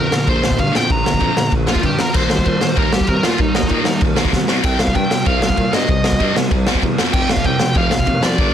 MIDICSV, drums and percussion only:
0, 0, Header, 1, 2, 480
1, 0, Start_track
1, 0, Key_signature, -3, "minor"
1, 0, Tempo, 311850
1, 1385, Time_signature, 4, 2, 24, 8
1, 13143, End_track
2, 0, Start_track
2, 0, Title_t, "Drums"
2, 188, Note_on_c, 9, 38, 123
2, 342, Note_off_c, 9, 38, 0
2, 421, Note_on_c, 9, 36, 106
2, 425, Note_on_c, 9, 51, 73
2, 575, Note_off_c, 9, 36, 0
2, 579, Note_off_c, 9, 51, 0
2, 670, Note_on_c, 9, 38, 113
2, 781, Note_on_c, 9, 36, 94
2, 824, Note_off_c, 9, 38, 0
2, 901, Note_off_c, 9, 36, 0
2, 901, Note_on_c, 9, 36, 92
2, 904, Note_on_c, 9, 51, 81
2, 1055, Note_off_c, 9, 36, 0
2, 1058, Note_off_c, 9, 51, 0
2, 1157, Note_on_c, 9, 38, 112
2, 1311, Note_off_c, 9, 38, 0
2, 1383, Note_on_c, 9, 36, 103
2, 1385, Note_on_c, 9, 51, 77
2, 1537, Note_off_c, 9, 36, 0
2, 1538, Note_off_c, 9, 51, 0
2, 1636, Note_on_c, 9, 38, 109
2, 1745, Note_on_c, 9, 36, 82
2, 1790, Note_off_c, 9, 38, 0
2, 1857, Note_on_c, 9, 51, 67
2, 1862, Note_off_c, 9, 36, 0
2, 1862, Note_on_c, 9, 36, 103
2, 2011, Note_off_c, 9, 51, 0
2, 2016, Note_off_c, 9, 36, 0
2, 2107, Note_on_c, 9, 38, 113
2, 2261, Note_off_c, 9, 38, 0
2, 2339, Note_on_c, 9, 51, 62
2, 2341, Note_on_c, 9, 36, 111
2, 2493, Note_off_c, 9, 51, 0
2, 2494, Note_off_c, 9, 36, 0
2, 2572, Note_on_c, 9, 38, 99
2, 2698, Note_on_c, 9, 36, 95
2, 2725, Note_off_c, 9, 38, 0
2, 2820, Note_off_c, 9, 36, 0
2, 2820, Note_on_c, 9, 36, 107
2, 2820, Note_on_c, 9, 51, 77
2, 2974, Note_off_c, 9, 36, 0
2, 2974, Note_off_c, 9, 51, 0
2, 3057, Note_on_c, 9, 38, 115
2, 3211, Note_off_c, 9, 38, 0
2, 3298, Note_on_c, 9, 49, 97
2, 3303, Note_on_c, 9, 36, 108
2, 3452, Note_off_c, 9, 49, 0
2, 3457, Note_off_c, 9, 36, 0
2, 3538, Note_on_c, 9, 38, 108
2, 3664, Note_on_c, 9, 36, 82
2, 3692, Note_off_c, 9, 38, 0
2, 3778, Note_on_c, 9, 51, 73
2, 3785, Note_off_c, 9, 36, 0
2, 3785, Note_on_c, 9, 36, 102
2, 3932, Note_off_c, 9, 51, 0
2, 3939, Note_off_c, 9, 36, 0
2, 4022, Note_on_c, 9, 38, 106
2, 4176, Note_off_c, 9, 38, 0
2, 4257, Note_on_c, 9, 51, 71
2, 4263, Note_on_c, 9, 36, 110
2, 4411, Note_off_c, 9, 51, 0
2, 4417, Note_off_c, 9, 36, 0
2, 4502, Note_on_c, 9, 38, 104
2, 4623, Note_on_c, 9, 36, 92
2, 4656, Note_off_c, 9, 38, 0
2, 4725, Note_on_c, 9, 51, 87
2, 4740, Note_off_c, 9, 36, 0
2, 4740, Note_on_c, 9, 36, 102
2, 4879, Note_off_c, 9, 51, 0
2, 4894, Note_off_c, 9, 36, 0
2, 4978, Note_on_c, 9, 38, 120
2, 5132, Note_off_c, 9, 38, 0
2, 5204, Note_on_c, 9, 51, 71
2, 5221, Note_on_c, 9, 36, 94
2, 5358, Note_off_c, 9, 51, 0
2, 5375, Note_off_c, 9, 36, 0
2, 5462, Note_on_c, 9, 38, 117
2, 5581, Note_on_c, 9, 36, 85
2, 5616, Note_off_c, 9, 38, 0
2, 5685, Note_on_c, 9, 51, 80
2, 5700, Note_off_c, 9, 36, 0
2, 5700, Note_on_c, 9, 36, 95
2, 5839, Note_off_c, 9, 51, 0
2, 5854, Note_off_c, 9, 36, 0
2, 5929, Note_on_c, 9, 38, 112
2, 6083, Note_off_c, 9, 38, 0
2, 6169, Note_on_c, 9, 51, 74
2, 6181, Note_on_c, 9, 36, 108
2, 6323, Note_off_c, 9, 51, 0
2, 6335, Note_off_c, 9, 36, 0
2, 6412, Note_on_c, 9, 38, 116
2, 6537, Note_on_c, 9, 36, 92
2, 6566, Note_off_c, 9, 38, 0
2, 6659, Note_off_c, 9, 36, 0
2, 6659, Note_on_c, 9, 36, 101
2, 6660, Note_on_c, 9, 38, 67
2, 6813, Note_off_c, 9, 36, 0
2, 6814, Note_off_c, 9, 38, 0
2, 6897, Note_on_c, 9, 38, 90
2, 7051, Note_off_c, 9, 38, 0
2, 7135, Note_on_c, 9, 49, 90
2, 7135, Note_on_c, 9, 51, 70
2, 7140, Note_on_c, 9, 36, 107
2, 7289, Note_off_c, 9, 49, 0
2, 7289, Note_off_c, 9, 51, 0
2, 7294, Note_off_c, 9, 36, 0
2, 7377, Note_on_c, 9, 38, 105
2, 7500, Note_on_c, 9, 36, 79
2, 7531, Note_off_c, 9, 38, 0
2, 7619, Note_on_c, 9, 51, 80
2, 7621, Note_off_c, 9, 36, 0
2, 7621, Note_on_c, 9, 36, 98
2, 7773, Note_off_c, 9, 51, 0
2, 7775, Note_off_c, 9, 36, 0
2, 7866, Note_on_c, 9, 38, 119
2, 8020, Note_off_c, 9, 38, 0
2, 8097, Note_on_c, 9, 51, 75
2, 8099, Note_on_c, 9, 36, 116
2, 8251, Note_off_c, 9, 51, 0
2, 8253, Note_off_c, 9, 36, 0
2, 8344, Note_on_c, 9, 38, 117
2, 8458, Note_on_c, 9, 36, 88
2, 8498, Note_off_c, 9, 38, 0
2, 8577, Note_on_c, 9, 51, 80
2, 8579, Note_off_c, 9, 36, 0
2, 8579, Note_on_c, 9, 36, 98
2, 8731, Note_off_c, 9, 51, 0
2, 8733, Note_off_c, 9, 36, 0
2, 8822, Note_on_c, 9, 38, 117
2, 8976, Note_off_c, 9, 38, 0
2, 9059, Note_on_c, 9, 36, 117
2, 9059, Note_on_c, 9, 51, 75
2, 9213, Note_off_c, 9, 36, 0
2, 9213, Note_off_c, 9, 51, 0
2, 9298, Note_on_c, 9, 38, 119
2, 9420, Note_on_c, 9, 36, 88
2, 9452, Note_off_c, 9, 38, 0
2, 9542, Note_off_c, 9, 36, 0
2, 9542, Note_on_c, 9, 36, 101
2, 9545, Note_on_c, 9, 51, 86
2, 9696, Note_off_c, 9, 36, 0
2, 9699, Note_off_c, 9, 51, 0
2, 9795, Note_on_c, 9, 38, 113
2, 9949, Note_off_c, 9, 38, 0
2, 10023, Note_on_c, 9, 36, 108
2, 10023, Note_on_c, 9, 51, 78
2, 10176, Note_off_c, 9, 36, 0
2, 10177, Note_off_c, 9, 51, 0
2, 10260, Note_on_c, 9, 38, 113
2, 10384, Note_on_c, 9, 36, 87
2, 10414, Note_off_c, 9, 38, 0
2, 10505, Note_off_c, 9, 36, 0
2, 10505, Note_on_c, 9, 36, 98
2, 10514, Note_on_c, 9, 51, 72
2, 10659, Note_off_c, 9, 36, 0
2, 10667, Note_off_c, 9, 51, 0
2, 10751, Note_on_c, 9, 38, 115
2, 10905, Note_off_c, 9, 38, 0
2, 10981, Note_on_c, 9, 36, 100
2, 10981, Note_on_c, 9, 57, 90
2, 11135, Note_off_c, 9, 36, 0
2, 11135, Note_off_c, 9, 57, 0
2, 11227, Note_on_c, 9, 38, 122
2, 11337, Note_on_c, 9, 36, 90
2, 11381, Note_off_c, 9, 38, 0
2, 11455, Note_on_c, 9, 51, 78
2, 11458, Note_off_c, 9, 36, 0
2, 11458, Note_on_c, 9, 36, 107
2, 11609, Note_off_c, 9, 51, 0
2, 11612, Note_off_c, 9, 36, 0
2, 11690, Note_on_c, 9, 38, 120
2, 11844, Note_off_c, 9, 38, 0
2, 11920, Note_on_c, 9, 51, 71
2, 11935, Note_on_c, 9, 36, 108
2, 12074, Note_off_c, 9, 51, 0
2, 12089, Note_off_c, 9, 36, 0
2, 12175, Note_on_c, 9, 38, 96
2, 12298, Note_on_c, 9, 36, 95
2, 12329, Note_off_c, 9, 38, 0
2, 12417, Note_on_c, 9, 51, 82
2, 12420, Note_off_c, 9, 36, 0
2, 12420, Note_on_c, 9, 36, 96
2, 12571, Note_off_c, 9, 51, 0
2, 12574, Note_off_c, 9, 36, 0
2, 12663, Note_on_c, 9, 38, 110
2, 12817, Note_off_c, 9, 38, 0
2, 12901, Note_on_c, 9, 51, 81
2, 12902, Note_on_c, 9, 36, 110
2, 13055, Note_off_c, 9, 51, 0
2, 13056, Note_off_c, 9, 36, 0
2, 13143, End_track
0, 0, End_of_file